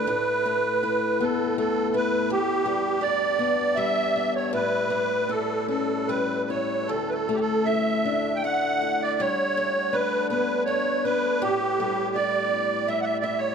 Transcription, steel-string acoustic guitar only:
\new Staff \with { instrumentName = "Steel-string acoustic guitar" } { \time 3/4 \key a \mixolydian \tempo 4 = 80 a,8 a8 e'8 b8 a8 e'8 | e,8 g8 d'8 b8 g8 d'8 | a,8 g8 e'8 cis'8 g8 e'8 | d,8 a8 e'8 d'8 a8 e'8 |
g8 a8 d'8 b8 a8 d'8 | a,8 g8 e'4 g8 e'8 | }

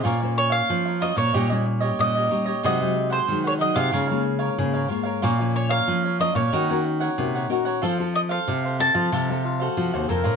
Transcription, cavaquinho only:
\new Staff \with { instrumentName = "Cavaquinho" } { \time 4/4 \key bes \minor \tempo 4 = 92 <f' bes' des'' f''>16 <bes' des''>16 r16 <bes' des'' f''>8 <bes' des'' f''>16 <f' bes' des'' f''>16 <bes' des'' f''>16 <ees' g' des'' ees''>16 <g' des'' ees''>16 r16 <g' des'' ees''>8 <g' des'' ees''>16 <ees' g' des'' ees''>16 <g' des'' ees''>16 | <ees' aes' c'' ges''>16 <aes' c'' ges''>16 r16 <aes' c'' ges''>8 <aes' c'' ges''>16 <ees' aes' c'' ges''>16 <aes' c'' ges''>16 <f' bes' des'' f''>16 <bes' des'' f''>16 r16 <bes' des'' f''>8 <bes' des'' f''>16 <f' bes' des'' f''>16 <bes' des'' f''>16 | <f' bes' des'' f''>16 <bes' des'' f''>16 r16 <bes' des'' f''>8 <bes' des'' f''>16 <f' bes' des'' f''>16 <bes' des'' f''>16 <ees' bes' des'' ges''>16 <bes' des'' ges''>16 r16 <bes' des'' ges''>8 <bes' des'' ges''>16 <ees' bes' des'' ges''>16 <bes' des'' ges''>16 | <f' a' c'' f''>16 <a' c'' f''>16 r16 <a' c'' f''>8 <a' c'' f''>16 <f' a' c'' f''>16 <a' c'' f''>16 <f' a' c'' f''>16 <a' c'' f''>16 r16 <a' c'' f''>8 <a' c'' f''>16 <f' a' c'' f''>16 <a' c'' f''>16 | }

